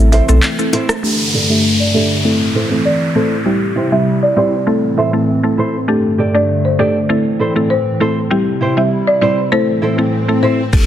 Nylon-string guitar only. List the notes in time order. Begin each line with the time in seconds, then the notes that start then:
0.12 E4 A4 C5
0.28 E4 A4 C5
0.73 E4 A4 C5
1.33 G4 A4 D5
1.94 G4 A4 D5
2.55 E4 A4 C5
2.71 muted nylon-string guitar stroke
3.15 E4 A4 C5
3.76 E4 G4 C5
4.36 E4 G4 C5
4.97 E4 A4 C5
5.13 muted nylon-string guitar stroke
5.58 E4 A4 C5
6.18 G4 A4 D5
6.79 G4 A4 D5
7.39 E4 A4 C5
7.56 muted nylon-string guitar stroke
8.00 E4 A4 C5
8.61 E4 G4 C5
9.21 E4 G4 C5
9.82 E4 A4 C5
9.98 muted nylon-string guitar stroke
10.42 E4 A4 C5